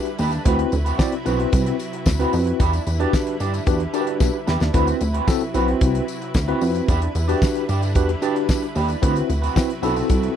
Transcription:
Already playing: D3 G3 E4 B4
0.05 muted clean electric guitar stroke, closed hi-hat
0.19 D#2 D4 G4 B4, open hi-hat, tambourine
0.32 muted clean electric guitar stroke, closed hi-hat, tambourine
0.45 D2 C3 F#3 C4 E4 F#4 B4, kick, closed hi-hat, tambourine
0.58 muted clean electric guitar stroke, closed hi-hat
0.71 D2, muted clean electric guitar stroke, closed hi-hat, tambourine
0.85 C4 F#4 B4, closed hi-hat, tambourine
0.98 C4 E4 F#4 D5, muted clean electric guitar stroke, kick, snare, tambourine
1.12 muted clean electric guitar stroke, closed hi-hat
1.25 B1 C4 E4 F#4 B4, closed hi-hat, tambourine
1.39 muted clean electric guitar stroke, closed hi-hat
1.52 C2, muted clean electric guitar stroke, kick, closed hi-hat, tambourine
1.66 muted clean electric guitar stroke, closed hi-hat
1.79 closed hi-hat, tambourine
1.93 muted clean electric guitar stroke, closed hi-hat
2.06 D2, muted clean electric guitar stroke, kick, snare, tambourine
2.19 C4 E4 F#4 B4, closed hi-hat
2.32 F2, muted clean electric guitar stroke, open hi-hat, tambourine
2.46 muted clean electric guitar stroke, closed hi-hat
2.59 E2 D3 G3 D4 G4 B4, kick, closed hi-hat, tambourine
2.73 muted clean electric guitar stroke, closed hi-hat, tambourine
2.86 E2, muted clean electric guitar stroke, closed hi-hat, tambourine
3.00 D4 F#4 G4 B4 D5, closed hi-hat
3.13 muted clean electric guitar stroke, kick, snare, tambourine
3.27 muted clean electric guitar stroke, closed hi-hat
3.40 G2 D4 G4 D5, closed hi-hat, tambourine
3.53 muted clean electric guitar stroke, closed hi-hat, tambourine
3.67 E2 D4 F#4 G4 B4, muted clean electric guitar stroke, kick, closed hi-hat, tambourine
3.80 muted clean electric guitar stroke, closed hi-hat
3.93 D4 F#4 G4 A#4 D5, closed hi-hat, tambourine
4.01 B4
4.07 muted clean electric guitar stroke, closed hi-hat
4.20 B1, kick, snare, tambourine
4.34 muted clean electric guitar stroke
4.47 E2 D4 G4 B4, snare, tambourine
4.60 D#2, muted clean electric guitar stroke, snare, tambourine
4.73 D2 C3 F#3 C4 E4 F#4 B4, kick, closed hi-hat, tambourine
4.87 muted clean electric guitar stroke, closed hi-hat, tambourine
5.00 D2, muted clean electric guitar stroke, closed hi-hat, tambourine
5.14 C4 F#4 B4, closed hi-hat
5.27 C4 E4 F#4 A4, muted clean electric guitar stroke, kick, snare, tambourine
5.41 muted clean electric guitar stroke, closed hi-hat
5.54 B1 C4 E4 F#4 B4, closed hi-hat, tambourine
5.68 muted clean electric guitar stroke, closed hi-hat
5.81 C2, muted clean electric guitar stroke, kick, closed hi-hat, tambourine
5.95 muted clean electric guitar stroke, closed hi-hat
6.08 closed hi-hat, tambourine
6.22 muted clean electric guitar stroke, closed hi-hat
6.34 D2, muted clean electric guitar stroke, kick, snare, tambourine
6.48 C4 E4 F#4 B4, closed hi-hat
6.61 F2, muted clean electric guitar stroke, open hi-hat, tambourine
6.74 muted clean electric guitar stroke, closed hi-hat, tambourine
6.88 E2 D3 G3 D4 G4 B4, kick, closed hi-hat, tambourine
7.02 muted clean electric guitar stroke, closed hi-hat
7.15 E2, muted clean electric guitar stroke, closed hi-hat, tambourine
7.28 D4 F#4 G4 B4 D5, closed hi-hat, tambourine
7.41 muted clean electric guitar stroke, kick, snare, tambourine
7.55 muted clean electric guitar stroke, closed hi-hat
7.68 G2 D4 G4 D5, closed hi-hat, tambourine
7.82 muted clean electric guitar stroke, closed hi-hat, tambourine
7.95 E2 D4 F#4 G4 B4, muted clean electric guitar stroke, kick, closed hi-hat, tambourine
8.08 muted clean electric guitar stroke, closed hi-hat
8.22 D4 F#4 G4 B4 D5, closed hi-hat, tambourine
8.36 muted clean electric guitar stroke, closed hi-hat
8.49 kick, snare, tambourine
8.62 muted clean electric guitar stroke, closed hi-hat
8.75 D#2 D4 G4 B4, open hi-hat, tambourine
8.88 muted clean electric guitar stroke, closed hi-hat, tambourine
9.02 D2 C3 F#3 C4 E4 F#4 B4, kick, closed hi-hat, tambourine
9.15 muted clean electric guitar stroke, closed hi-hat, tambourine
9.29 D2, muted clean electric guitar stroke, closed hi-hat, tambourine
9.42 C4 F#4 B4, closed hi-hat, tambourine
9.55 C4 E4 F#4 B4, muted clean electric guitar stroke, kick, snare, tambourine
9.69 muted clean electric guitar stroke, closed hi-hat
9.82 B1 C4 E4 F#4 A4 B4, closed hi-hat, tambourine
9.96 muted clean electric guitar stroke, closed hi-hat, tambourine
10.09 C2, muted clean electric guitar stroke, kick, closed hi-hat, tambourine
10.23 muted clean electric guitar stroke, closed hi-hat

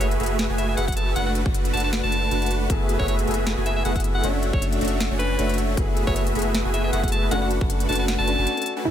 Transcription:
Already playing: F#1 A3 F#4 G#4 B4 E5
0.00 C#5, closed hi-hat
0.11 closed hi-hat
0.20 F#1 A3 F#4 G#4 B4 E5, closed hi-hat
0.23 closed hi-hat
0.26 closed hi-hat
0.39 snare, closed hi-hat
0.50 F#1 A3 F#4 G#4 B4 G#5
0.58 E5, closed hi-hat
0.69 E5
0.77 F#1 A3 F#4 G#4 B4 E5 F#5, closed hi-hat
0.88 F#5, kick, closed hi-hat
0.92 closed hi-hat
0.96 A5, closed hi-hat
1.16 F#1 A3 D4 F#4 B4 F#5, closed hi-hat
1.26 F#5
1.35 closed hi-hat
1.46 F#1 A3 D4 F#4 B4 F#5, kick
1.54 closed hi-hat
1.65 closed hi-hat
1.74 F#1 A3 D4 F#4 B4 F#5 A5, closed hi-hat
1.77 closed hi-hat
1.80 closed hi-hat
1.84 A5
1.93 snare, closed hi-hat
2.03 F#1 A3 D4 F#4 B4 A5
2.12 closed hi-hat
2.31 F#1 A3 D4 F#4 B4 F#5, closed hi-hat
2.42 closed hi-hat
2.46 closed hi-hat
2.51 closed hi-hat
2.68 F#1 A3 B3 E4 F#4 G#4 B4 E5, kick, closed hi-hat
2.89 closed hi-hat
2.99 F#1 A3 F#4 G#4 B4 C#5 E5, kick
3.08 C#5, closed hi-hat
3.19 closed hi-hat
3.25 F#1 A3 B3 E4 F#4 G#4 B4 E5, closed hi-hat
3.31 closed hi-hat
3.34 closed hi-hat
3.47 snare, closed hi-hat
3.57 F#1 A3 F#4 G#4 B4 G#5
3.66 E5, closed hi-hat
3.76 E5
3.84 F#1 A3 B3 E4 F#4 G#4 B4 E5 F#5, closed hi-hat
3.96 F#5, kick, closed hi-hat
4.00 closed hi-hat
4.04 closed hi-hat
4.15 F#5
4.22 F#1 A3 C#4 D4 F#4 C#5 E5, closed hi-hat
4.26 F#4
4.43 closed hi-hat
4.53 F#1 A3 D4 F#4 C#5 E5, kick
4.62 closed hi-hat
4.72 closed hi-hat
4.79 F#1 A3 C#4 D4 F#4 C#5 E5, closed hi-hat
4.85 closed hi-hat
4.88 closed hi-hat
5.00 snare, closed hi-hat
5.11 F#1 A3 D4 F#4 C#5 G#5
5.20 B4, closed hi-hat
5.38 F#1 A3 D4 F#4 C#5 E5, closed hi-hat
5.49 closed hi-hat
5.54 closed hi-hat
5.58 closed hi-hat
5.75 F#1 A3 B3 E4 F#4 G#4 B4 E5, kick, closed hi-hat
5.97 closed hi-hat
6.07 F#1 A3 F#4 G#4 B4 C#5 E5, kick
6.16 C#5, closed hi-hat
6.27 closed hi-hat
6.33 F#1 A3 B3 E4 F#4 G#4 B4 E5, closed hi-hat
6.37 G#4, closed hi-hat
6.42 closed hi-hat
6.55 snare, closed hi-hat
6.65 F#1 A3 F#4 G#4 B4 G#5
6.74 E5, closed hi-hat
6.84 E5
6.92 F#1 A3 B3 E4 F#4 G#4 B4 E5 F#5, closed hi-hat
7.03 F#5, kick, closed hi-hat
7.08 closed hi-hat
7.12 A5, closed hi-hat
7.29 F#1 A3 C#4 D4 F#4 B4 F#5, closed hi-hat
7.42 F#5
7.51 closed hi-hat
7.61 F#1 A3 D4 F#4 B4 F#5, kick
7.70 closed hi-hat
7.80 closed hi-hat
7.88 F#1 A3 C#4 D4 F#4 B4 F#5 A5, closed hi-hat
7.92 closed hi-hat
7.95 closed hi-hat
8.00 A5
8.08 snare, closed hi-hat
8.19 F#1 A3 D4 F#4 B4 A5
8.27 A3 C#4 D4 F#4, closed hi-hat
8.38 F#1 A3 D4 F#4 B4 G#5
8.47 closed hi-hat
8.57 A3 C#4 D4 A4, closed hi-hat
8.62 closed hi-hat
8.66 closed hi-hat
8.76 A3 D4 F#4 B4 G#5
8.83 F#2 A3 B3 C#4 E4 G#4, impact

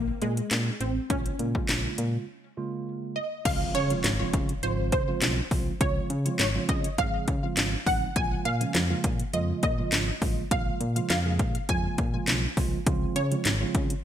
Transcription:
Already playing: A#1 A#3
0.22 A#2 G#3, closed hi-hat
0.37 closed hi-hat
0.51 A#2, snare, clap, closed hi-hat
0.81 A1 C4, closed hi-hat
1.10 A#1 C#3 G#3 A#3 C#4 F4, kick, closed hi-hat
1.26 closed hi-hat
1.39 A#2 C#3 G#3 A#3 F4, closed hi-hat
1.55 C#3 G#3 A#3 F4, kick
1.69 A#1, snare, clap, closed hi-hat
1.98 A#2, closed hi-hat
2.57 C#3 G#3 A#3 F4
3.16 D#5
3.45 C#2 C#3 F3 G#3 C4 F4 F5, kick, closed hi-hat, crash, impact
3.75 C#3 C#5, closed hi-hat
3.90 C#3 F3 G#3 C4 F4, closed hi-hat
4.04 G#1, snare, clap, closed hi-hat
4.20 C#3 F3 G#3 C4 F4
4.33 C#3, kick, closed hi-hat
4.49 closed hi-hat
4.63 G#1 C#3 F3 G#3 C4 F4 C5, closed hi-hat
4.92 C#3 C5, kick, closed hi-hat
5.08 C#3 F3 G#3 C4 F4
5.22 B1, snare, clap, closed hi-hat
5.51 C2 C#3 F3 G#3 C4 F4, kick, open hi-hat
5.80 C#2 C#3 F3 G#3 C4 F4 C#5, kick, closed hi-hat
6.10 C#3, closed hi-hat
6.25 C#3 F3 G#3 C4 F4, closed hi-hat
6.39 G#1 C#5, snare, clap, closed hi-hat
6.55 C#3 F3 G#3 C4 F4
6.69 C#3 D#5, kick, closed hi-hat
6.84 closed hi-hat
6.98 G#1 C#3 F3 G#3 C4 G#4 F5, kick, closed hi-hat
7.28 C#3, kick, closed hi-hat
7.43 C#3 F3 G#3 C4 F4
7.57 G#1, snare, clap, closed hi-hat
7.86 A1 C#3 F3 G#3 C4 D#4 F#5, kick, open hi-hat
8.16 A#1 C#3 F3 G#3 A#3 F4 G#5, kick, closed hi-hat
8.45 A#2 F5, closed hi-hat
8.61 C#3 F3 G#3 A#3 C#4, closed hi-hat
8.75 F2, snare, clap, closed hi-hat
8.90 C#3 F3 G#3 A#3 F4
9.04 A#2, kick, closed hi-hat
9.20 closed hi-hat
9.33 F2 C#3 F3 G#3 A#3 F4 D#5, closed hi-hat
9.63 A#2 D#5, kick, closed hi-hat
9.78 C#3 F3 G#3 A#3 F4
9.92 G#1, snare, clap, closed hi-hat
10.22 A1 C#3 F3 G#3 A#3 F4, kick, open hi-hat
10.51 A#1 C#3 F3 G#3 A#3 F4 F5, kick, closed hi-hat
10.81 A#2, closed hi-hat
10.96 C#3 F3 G#3 A#3 F4, closed hi-hat
11.10 F2 F5, snare, clap, closed hi-hat
11.25 C#3 F3 G#3 A#3 G#4
11.39 A#2, kick, closed hi-hat
11.55 closed hi-hat
11.69 F2 C#3 F3 G#3 A#3 F4 G#5, kick, closed hi-hat
11.98 A#2, kick, closed hi-hat
12.14 C#3 F3 G#3 A#3 F4
12.27 B1, snare, clap, closed hi-hat
12.57 C2 C#3 F3 G#3 A#3 F4, kick, open hi-hat
12.86 C#2 C#3 F3 G#3 C4 F4, kick, closed hi-hat
13.16 C#3 C#5, closed hi-hat
13.31 C#3 F3 G#3 C4 F4, closed hi-hat
13.45 G#1, snare, clap, closed hi-hat
13.61 C#3 F3 G#3 C4 F4
13.75 C#3, kick, closed hi-hat
13.90 closed hi-hat

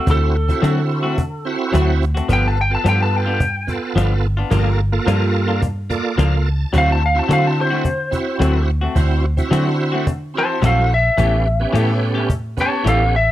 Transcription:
Already playing: A3 C4
0.06 D2 C4 E4 F#4, cajon bass
0.11 A4
0.35 cajon slap
0.48 C4 E4 F#4, cajon bass
0.62 D3 F#3 A3 C4 F#4, cajon slap
0.91 cajon slap
1.03 A3 C4 F#4, cajon slap
1.18 cajon bass
1.45 C4 E4 F#4, cajon slap
1.73 D2 F#3 A3 C4 F#4, cajon bass, cajon slap
2.01 cajon slap
2.03 cajon slap
2.15 A3 C4 F#4, cajon slap
2.28 G1 F3 B3 D4 F4 G4 A4 B4, cajon bass
2.33 G5
2.48 A5
2.56 cajon slap
2.61 G5
2.70 B3 F4 A4
2.75 A5
2.84 G2 F3 B3 D4 F4 G4 B4, cajon slap
2.89 G5
3.03 A5
3.13 G5, cajon slap
3.26 B3 D4 F4
3.40 cajon bass
3.54 cajon slap
3.67 B3 F4 A4, cajon bass
3.95 G1 F3 B3 D4 F4, cajon slap
4.24 cajon slap
4.37 B3 D4 F4
4.50 G1 F3 A#3 D4 F4 G4 A4 A#4, cajon bass
4.79 cajon slap
4.92 A#3 F4 A4, cajon slap
5.06 G2 F3 G3 A#3 D4 F4 G4, cajon slap
5.35 cajon slap
5.48 A#3 D4 F4, cajon slap
5.62 cajon bass
5.90 A#3 F4 A4 D5, cajon bass
6.18 C#2 F3 A#3 D4 F4 F5, cajon slap
6.46 A5, cajon slap
6.73 D2 F#3 A3 C4 D4 E4 F#4 C5, cajon bass
6.78 F5
6.92 A5
7.01 cajon slap
7.06 F5
7.15 C4 E4 F#4
7.19 A5
7.29 D3 F#3 A3 C4 D4 F#4 C5, cajon slap
7.33 F5
7.43 cajon slap
7.47 A5
7.57 cajon slap
7.61 C5
7.70 A3 C4 F#4
7.85 cajon bass
8.11 C4 E4 F#4, cajon bass
8.28 cajon slap
8.39 D2 F#3 A3 C4 F#4, cajon slap
8.68 cajon slap
8.70 cajon slap
8.81 A3 C4 F#4
8.95 D2 C4 D4 E4 F#4 C5, cajon bass
9.24 cajon slap
9.37 C4 E4 F#4, cajon bass
9.50 D3 F#3 A3 C4 D4 F#4 C5, cajon slap
9.79 cajon slap
9.92 A3 C4 F#4, cajon slap
10.07 cajon bass
10.34 C4 E4 F#4, cajon slap
10.38 C5 A5
10.62 A#1 F#3 A3 C4 F#4 A4, cajon bass, cajon slap
10.67 F5
10.90 cajon slap
10.92 E5, cajon slap
11.18 A1 E3 A3 B3 C#4 G4 A4, cajon bass
11.46 cajon slap
11.60 B3 C#4 G4
11.73 A2 E3 A3 C#4 G4 A4, cajon slap
12.02 cajon slap
12.15 A3 C#4 G4
12.30 cajon bass
12.57 B3 C#4 G4, cajon bass
12.61 C#5 A5
12.85 A1 E3 A3 C#4 G4 A4, cajon slap
12.89 F5
13.13 E5, cajon slap

